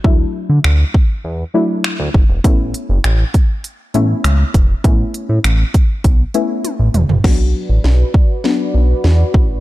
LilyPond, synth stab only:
\new Staff \with { instrumentName = "Synth stab" } { \time 4/4 \key d \major \tempo 4 = 100 <fis a d' e'>4. r4 <fis a d' e'>4~ <fis a d' e'>16 r16 | <a b cis' e'>4. r4 <a b cis' e'>4~ <a b cis' e'>16 r16 | <a b cis' e'>4. r4 <a b cis' e'>4~ <a b cis' e'>16 r16 | <fis b d' fis'>4. r8 <fis b d' fis'>4. r8 | }